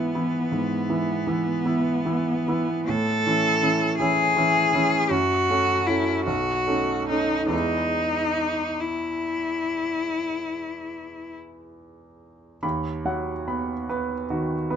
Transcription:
Already playing: grand piano G#2 E3 B3 E4, cello B3
0.15 grand piano E3 B3 E4
0.52 grand piano G#2
0.90 grand piano E3 B3 E4
1.27 grand piano E3 B3 E4
1.65 grand piano E3 B3 E4
2.05 grand piano E3 B3 E4
2.48 grand piano E3 B3 E4
2.89 grand piano A2, cello A4
3.26 grand piano E3 C#4 E4
3.63 grand piano E3 C#4 E4
3.98 grand piano E3 C#4 E4, cello G#4
4.37 grand piano E3 C#4 E4
4.74 grand piano E3 C#4 E4
5.10 grand piano F#2, cello F#4
5.50 grand piano A3 C#4 F#4
5.87 grand piano A3 C#4 F#4, cello E4
6.27 grand piano B1, cello F#4
6.67 grand piano A3 C#4 D#4
7.09 grand piano A3 C#4 D#4, cello D#4
7.46 grand piano E2 G#3 B3 E4, cello D#4
8.80 cello E4
12.63 grand piano D#2 B5
13.05 grand piano F#3 F#5
13.48 grand piano B3 B5
13.89 grand piano B3 B4
14.30 grand piano D#3 F#4
14.70 grand piano B3 B4

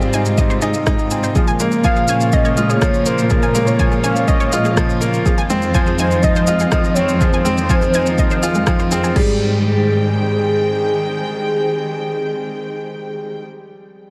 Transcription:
Already playing: cello section G#2, string section C3 D#3 G#3 F4, grand piano G3 C4 D#4 G4
0.01 synth arpeggio sound G#4, shaker
0.13 grand piano D#4, synth arpeggio sound G#5, shaker
0.25 shaker
0.38 grand piano D#4, synth arpeggio sound D#5, kick, shaker
0.50 synth arpeggio sound C5, shaker
0.62 grand piano D#4, synth arpeggio sound G#4, shaker
0.74 shaker
0.87 synth arpeggio sound G#3, grand piano D#4, kick, cross-stick, shaker
0.99 shaker
1.11 grand piano C4, synth arpeggio sound G#5, shaker
1.23 synth arpeggio sound C5, shaker
1.35 cello section A#2, string section C#3 F3 G#3 A#3 F4, grand piano F3, synth arpeggio sound G#4, kick, shaker
1.47 synth arpeggio sound G#5, shaker
1.60 synth arpeggio sound G#3, grand piano A#3, shaker
1.72 shaker
1.84 grand piano F3, soft synth lead F5, synth arpeggio sound G#5, kick, shaker
1.96 synth arpeggio sound G#4, shaker
2.08 grand piano C#4, synth arpeggio sound G#5, shaker
2.21 shaker
2.32 grand piano C#4, soft synth lead D#5, synth arpeggio sound D#5, kick, shaker
2.45 synth arpeggio sound C#5, shaker
2.57 synth arpeggio sound G#3, grand piano F4, shaker
2.70 synth arpeggio sound G#4, soft synth lead C#5, shaker
2.81 grand piano F3, kick, cross-stick, shaker
2.94 shaker
3.06 grand piano A#3, soft synth lead C5, shaker
3.18 shaker
3.30 grand piano F3, synth arpeggio sound G#4, soft synth lead A#4, string section C#5, kick, shaker
3.43 synth arpeggio sound G#5, shaker
3.55 synth arpeggio sound G#3, grand piano A#3, shaker
3.67 soft synth lead C#5, shaker
3.79 grand piano F3, synth arpeggio sound G#5, kick, shaker
3.92 synth arpeggio sound G#4, shaker
4.04 grand piano C#4, soft synth lead F5, synth arpeggio sound G#5, shaker
4.16 shaker
4.28 grand piano C#4, soft synth lead D#5, synth arpeggio sound D#5, kick, shaker
4.40 synth arpeggio sound C#5, shaker
4.52 synth arpeggio sound G#3, grand piano F4, shaker
4.65 synth arpeggio sound G#4, shaker
4.77 grand piano F3, kick, cross-stick, shaker
4.89 shaker
5.01 grand piano A#3, shaker
5.14 shaker
5.25 cello section F2, string section D#3 G#3 C4, grand piano F3, synth arpeggio sound G#4, kick, shaker
5.38 synth arpeggio sound G#5, shaker
5.50 synth arpeggio sound G#3, grand piano C4, shaker
5.62 shaker
5.74 grand piano F3, soft synth lead C5, synth arpeggio sound G#5, kick, shaker
5.87 synth arpeggio sound G#4, shaker
5.99 grand piano D#4, synth arpeggio sound G#5, shaker
6.11 shaker
6.23 grand piano D#4, soft synth lead D#5, synth arpeggio sound D#5, kick, shaker
6.35 synth arpeggio sound C5, shaker
6.47 synth arpeggio sound G#3, grand piano F4, shaker
6.59 synth arpeggio sound G#4, shaker
6.72 grand piano F3, kick, cross-stick, shaker
6.84 shaker
6.95 grand piano C4, soft synth lead C#5, shaker
7.09 shaker
7.19 grand piano F3, string section A#3, synth arpeggio sound G#4, soft synth lead C5, kick, shaker
7.33 synth arpeggio sound G#5, shaker
7.45 synth arpeggio sound G#3, grand piano C4, shaker
7.58 shaker
7.69 grand piano F3, synth arpeggio sound G#5, kick, shaker
7.82 synth arpeggio sound G#4, shaker
7.94 grand piano D#4, synth arpeggio sound G#5, shaker
8.06 shaker
8.18 grand piano D#4, synth arpeggio sound D#5, kick, shaker
8.30 synth arpeggio sound C5, shaker
8.43 grand piano F4, synth arpeggio sound G#4, shaker
8.55 synth arpeggio sound G#3, shaker
8.67 grand piano F3, synth arpeggio sound G#4, kick, cross-stick, shaker
8.79 synth arpeggio sound C5, shaker
8.91 grand piano C4, synth arpeggio sound G#4, shaker
9.04 synth arpeggio sound G#4, shaker
9.15 cello section G#2, string section D#3 G#3 C4 G5, grand piano G3, synth arpeggio sound G#4, soft synth lead G#4, kick, crash

